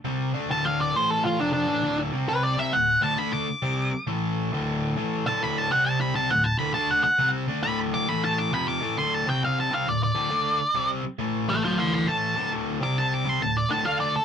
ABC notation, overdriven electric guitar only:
X:1
M:4/4
L:1/8
Q:"Swing" 1/4=135
K:Ador
V:1 name="Overdriven electric guitar" clef=bass
[C,G,C] [D,A,D] [D,,A,,D,]2 [A,,E,A,]2 [=F,,C,=F,] [A,,E,A,] | [D,,A,,D,] [C,G,C]2 [C,G,C] [D,,A,,] [D,,A,,D,] [D,A,D] z | [C,G,C] z [A,,E,A,]2 [D,,A,,D,]2 [A,,E,A,] [D,,A,,D,] | [D,,A,,D,] [C,G,C]2 [C,G,C] [D,,A,,] [D,,A,,D,] [D,A,D] z |
[C,G,C] [D,A,D] [D,,A,,D,]2 [A,,E,A,]2 [=F,,C,=F,] [A,,E,A,] | [D,,A,,D,] [C,G,C]2 [C,G,C] [D,,A,,] [D,,A,,D,] [D,A,D] z | [C,G,C] z [A,,E,A,]2 [D,,A,,D,]2 [A,,E,A,] [D,,A,,D,] | [D,,A,,D,] [C,G,C]2 [C,G,C] [D,,A,,] [D,,A,,D,] [D,A,D] z |]